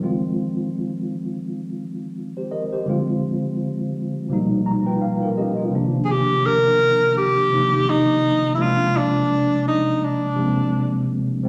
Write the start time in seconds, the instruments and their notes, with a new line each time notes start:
0.00 tine electric piano D#3 F3 G#3 C4 F4
2.37 tine electric piano G4 C5
2.51 tine electric piano A#4 D#5
2.72 tine electric piano G4 C5
2.85 tine electric piano D3 F3 G#3 C4
2.90 tine electric piano F4
4.29 tine electric piano B2 F3 G3 A#3
4.33 tine electric piano D#4
4.66 tine electric piano A#5
4.86 tine electric piano F4 B4 G5
5.01 tine electric piano F5
5.22 tine electric piano F4 A#4
5.37 tine electric piano C#4 G4 D#5
5.58 tine electric piano B3 F4
5.70 tine electric piano C3 D#3 F3 A#3
5.75 tine electric piano D4
6.05 tenor saxophone G#4
6.11 tenor saxophone G4
6.46 tenor saxophone A#4
7.18 tenor saxophone G4
7.50 tine electric piano C3 D#3 F3 A#3
7.54 tine electric piano D#4
7.90 tenor saxophone D#4
8.55 tine electric piano C3 F3 G#3, tenor saxophone E4
8.60 tine electric piano A#3 D4, tenor saxophone F4
8.97 tenor saxophone D4
9.68 tenor saxophone D#4
10.04 tenor saxophone D4
10.36 tine electric piano C3 F3 G#3 A#3
10.40 tine electric piano C4
11.43 tine electric piano F3 G#3 C4